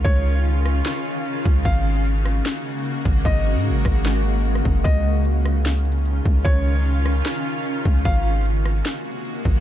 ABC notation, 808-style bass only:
X:1
M:4/4
L:1/16
Q:1/4=150
K:Db
V:1 name="808-style bass" clef=bass
D,,8 z6 D,,2 | A,,,8 z6 A,,,2 | A,,,3 A,,3/2 A,,,3/2 A,,,8 G,,,2 | D,,12- D,,2 D,,2 |
D,,8 z6 D,,2 | A,,,8 z6 A,,,2 |]